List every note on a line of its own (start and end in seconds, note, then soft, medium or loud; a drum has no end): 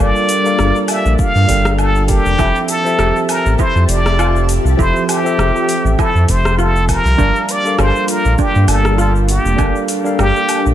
0.00 0.11 G1 medium
0.00 0.44 G3 medium
0.00 2.35 G3 medium
0.00 2.35 A#3 loud
0.00 0.45 D4 medium
0.00 2.35 D4 medium
0.00 2.35 F4 medium
0.00 0.45 A4 medium
0.00 0.46 A#4 medium
0.00 0.92 D5 loud
0.00 0.46 F5 loud
0.16 shaker soft
0.29 open hi-hat medium
0.29 shaker medium
0.44 0.56 G3 medium
0.44 0.56 D4 medium
0.44 0.57 A4 medium
0.44 0.57 A#4 medium
0.44 0.57 F5 medium
0.44 shaker soft
0.59 0.72 G1 medium
0.59 cross-stick medium
0.59 shaker soft
0.76 shaker soft
0.88 1.21 E5 loud
0.88 open hi-hat medium
0.88 low woodblock medium
0.88 shaker medium
1.06 1.16 A#1 loud
1.06 shaker soft
1.19 1.82 F5 loud
1.19 kick loud
1.19 shaker soft
1.36 1.46 G2 medium
1.36 shaker soft
1.48 2.19 G1 loud
1.48 2.05 G3 medium
1.48 2.06 D4 medium
1.48 2.06 A4 medium
1.48 2.06 A#4 medium
1.48 2.06 G5 loud
1.48 kick medium
1.48 open hi-hat medium
1.48 shaker medium
1.65 cross-stick medium
1.65 shaker soft
1.79 2.11 A4 loud
1.79 low woodblock medium
1.79 shaker soft
1.96 shaker soft
2.08 2.35 G3 loud
2.08 2.35 D4 medium
2.08 2.71 G4 loud
2.08 2.36 A4 medium
2.08 2.36 A#4 medium
2.08 2.36 A5 loud
2.08 kick loud
2.08 open hi-hat medium
2.08 shaker medium
2.26 2.36 F1 medium
2.26 shaker soft
2.37 2.52 F1 medium
2.37 2.81 F3 medium
2.37 7.15 F3 medium
2.37 2.81 C4 medium
2.37 2.66 E4 medium
2.37 2.81 G4 medium
2.37 7.15 G4 medium
2.37 2.82 A4 medium
2.37 2.82 E5 loud
2.37 7.15 E5 medium
2.37 7.15 A5 loud
2.37 kick loud
2.37 low woodblock medium
2.37 shaker soft
2.56 shaker soft
2.68 3.31 A4 loud
2.68 open hi-hat medium
2.68 shaker medium
2.84 2.96 F3 medium
2.84 2.97 C4 medium
2.84 2.97 G4 medium
2.84 2.97 A4 medium
2.84 2.97 E5 medium
2.84 shaker soft
2.99 3.12 F1 medium
2.99 3.27 G4 medium
2.99 cross-stick medium
2.99 shaker soft
3.16 shaker soft
3.29 3.62 A#4 loud
3.29 open hi-hat medium
3.29 low woodblock medium
3.29 shaker medium
3.46 3.56 A1 medium
3.46 shaker soft
3.59 3.87 E4 medium
3.59 3.91 C5 loud
3.59 kick loud
3.59 shaker soft
3.76 3.86 F2 medium
3.76 shaker soft
3.89 4.59 F1 loud
3.89 4.53 D5 loud
3.89 open hi-hat medium
3.89 shaker medium
4.06 cross-stick medium
4.06 shaker soft
4.19 4.48 F4 loud
4.19 low woodblock medium
4.19 shaker soft
4.36 shaker soft
4.49 open hi-hat medium
4.49 shaker medium
4.65 4.75 C2 medium
4.65 shaker soft
4.77 4.92 F1 medium
4.77 5.21 F3 loud
4.77 5.21 C4 medium
4.77 5.06 E4 medium
4.77 5.21 G4 medium
4.77 5.21 A4 medium
4.77 5.11 C5 loud
4.77 5.22 E5 loud
4.77 kick loud
4.77 shaker soft
4.96 shaker soft
5.09 5.99 G4 medium
5.09 open hi-hat medium
5.09 low woodblock medium
5.09 shaker medium
5.24 5.36 F3 medium
5.24 5.36 C4 medium
5.24 5.37 G4 medium
5.24 5.37 A4 medium
5.24 5.37 E5 loud
5.24 shaker soft
5.38 5.51 F1 medium
5.38 5.66 G4 medium
5.38 cross-stick medium
5.38 shaker soft
5.56 shaker soft
5.69 open hi-hat medium
5.69 shaker medium
5.85 5.95 A1 medium
5.85 shaker soft
5.99 6.26 E4 medium
5.99 6.32 A4 loud
5.99 kick loud
5.99 low woodblock medium
5.99 shaker soft
6.15 6.25 F2 medium
6.15 shaker soft
6.29 6.99 F1 loud
6.29 6.62 C5 loud
6.29 kick medium
6.29 open hi-hat medium
6.29 shaker medium
6.45 cross-stick medium
6.45 shaker soft
6.59 6.87 F4 loud
6.59 6.92 A4 loud
6.59 shaker soft
6.76 shaker soft
6.89 7.53 A#4 loud
6.89 kick loud
6.89 open hi-hat medium
6.89 low woodblock medium
6.89 shaker medium
7.05 7.15 C2 medium
7.05 shaker soft
7.17 7.31 G1 medium
7.17 7.61 G3 medium
7.17 10.74 G3 medium
7.17 10.74 A#3 medium
7.17 7.61 D4 medium
7.17 7.46 D4 medium
7.17 10.74 D4 medium
7.17 9.57 F4 medium
7.17 7.62 A#4 medium
7.17 7.62 F5 loud
7.17 7.61 A5 medium
7.17 kick loud
7.17 shaker soft
7.36 shaker soft
7.49 7.83 D5 loud
7.49 open hi-hat medium
7.49 shaker medium
7.65 7.76 G3 medium
7.65 7.77 D4 medium
7.65 7.77 A4 medium
7.65 7.77 A#4 medium
7.65 7.78 F5 loud
7.65 shaker soft
7.79 7.92 G1 loud
7.79 8.06 G4 medium
7.79 8.12 C5 loud
7.79 cross-stick medium
7.79 low woodblock medium
7.79 shaker soft
7.96 shaker soft
8.08 8.40 A#4 loud
8.08 open hi-hat medium
8.08 shaker medium
8.25 8.36 A#1 medium
8.25 shaker soft
8.38 8.66 D4 medium
8.38 8.72 G4 loud
8.38 kick loud
8.38 shaker soft
8.55 8.66 G2 medium
8.55 shaker soft
8.68 9.39 G1 loud
8.68 9.00 A4 medium
8.68 open hi-hat medium
8.68 low woodblock medium
8.68 shaker medium
8.85 cross-stick medium
8.85 shaker soft
8.98 9.27 F4 loud
8.98 9.14 A4 loud
8.98 shaker soft
9.16 shaker soft
9.29 9.89 G4 medium
9.29 open hi-hat medium
9.29 shaker medium
9.45 9.55 F1 medium
9.45 shaker soft
9.57 9.72 G1 loud
9.57 10.00 G3 medium
9.57 10.01 D4 medium
9.57 9.86 D4 medium
9.57 10.74 G4 medium
9.57 10.01 A4 medium
9.57 10.01 A#4 medium
9.57 10.02 F5 loud
9.57 kick loud
9.57 low woodblock medium
9.57 shaker soft
9.76 shaker soft
9.88 open hi-hat medium
9.88 shaker medium
10.04 10.16 G3 medium
10.04 10.16 D4 medium
10.04 10.17 A4 medium
10.04 10.17 A#4 medium
10.04 10.17 F5 loud
10.04 shaker soft
10.19 10.32 G1 loud
10.19 10.46 G4 medium
10.19 10.74 G4 loud
10.19 cross-stick medium
10.19 shaker soft
10.36 shaker soft
10.49 open hi-hat loud
10.49 low woodblock medium
10.49 shaker medium
10.66 10.74 A#1 medium
10.66 shaker soft